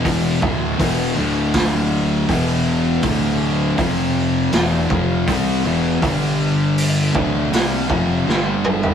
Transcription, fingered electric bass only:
X:1
M:4/4
L:1/8
Q:1/4=80
K:Dm
V:1 name="Fingered electric bass" clef=bass
E,,, D,,, E,,, D,,,3 E,,,2 | D,,,2 F,,,2 E,,, F,,, C,, E,,, | G,,,3 D,,, C,, F,,, G,,,2 |]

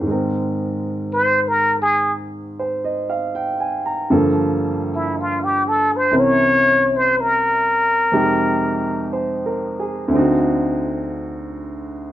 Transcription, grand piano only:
X:1
M:4/4
L:1/16
Q:"Swing" 1/4=59
K:Ab
V:1 name="Grand piano"
B z8 z c e f g a b | z16 | z4 (3c2 B2 A2- A z6 z |]
V:2 name="Grand piano" clef=bass
[A,,E,A,CB]16 | [G,,=D,F,B,=A]8 [C,,C,=E,_DB]8 | [F,,C,A,EG]8 [=D,,=D,CE^F]8 |]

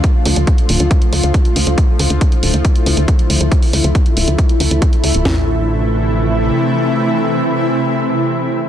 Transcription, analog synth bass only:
X:1
M:4/4
L:1/16
Q:1/4=138
K:Am
V:1 name="Analog synth bass" clef=bass
z2 D,, D,, z2 D,,, D,, z2 D,, D,, z2 D,, D,, | z2 D,, D,, z2 D,,, D,, z2 D,, D,, z2 D,, D,, | z2 D,, D,, z2 D,,, D,, z2 D,, D,, z2 D,, D,,, | A,,,12 z4 |
z16 |]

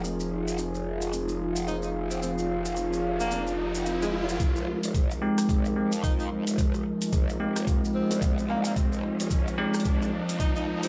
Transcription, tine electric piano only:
X:1
M:4/4
L:1/8
Q:"Swing 16ths" 1/4=110
K:Fm
V:1 name="Tine electric piano"
z8 | z8 | z3 [A,CEG]2 [A,CEG] z2 | z3 [A,CEG]4- [A,CEG]- |
[A,CEG]3 [A,CEG]2 z3 |]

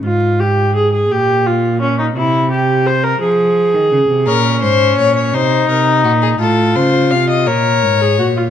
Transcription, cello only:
X:1
M:6/8
L:1/16
Q:3/8=57
K:Bbm
V:1 name="Cello" clef=bass
A,,6 B,,6 | C,6 F,3 E, D, C, | B,,2 A,,2 B,,2 C,2 C,2 B,,2 | =A,,2 D,2 C,2 B,,2 _A,,2 B,,2 |]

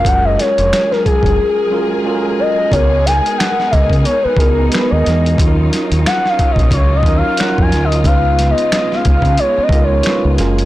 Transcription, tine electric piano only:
X:1
M:4/4
L:1/8
Q:"Swing 16ths" 1/4=90
K:Dbmix
V:1 name="Tine electric piano"
[A,DFGB]3 z2 [A,DFGB] [A,DFG=AB]2 | [A,CEGB]4 z [A,CEGA] [A,CEGB]2 | [G,DEFAB]4 z [G,DEFB] [G,DEFB]2 | [A,DEFc]4 z [A,DEFB] [A,DEFc] [A,DFGB] |]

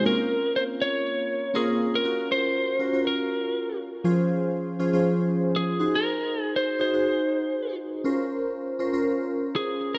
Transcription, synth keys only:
X:1
M:4/4
L:1/16
Q:"Swing 16ths" 1/4=120
K:Gblyd
V:1 name="Synth keys"
[B,CDFB]6- [B,CDFB] z4 z [B,CDFB]3 z | [DFGB]4- [DFGB] z [DFGB] [DFGB]6- [DFGB] z2 | [F,DFAc]4- [F,DFAc] z [F,DFAc] [F,DFAc]6- [F,DFAc] [EGAc]2- | [EGAc]4- [EGAc] z [EGAc] [EGAc]6- [EGAc] z2 |
[DFBc]4- [DFBc] z [DFBc] [DFBc]6- [DFBc] z2 |]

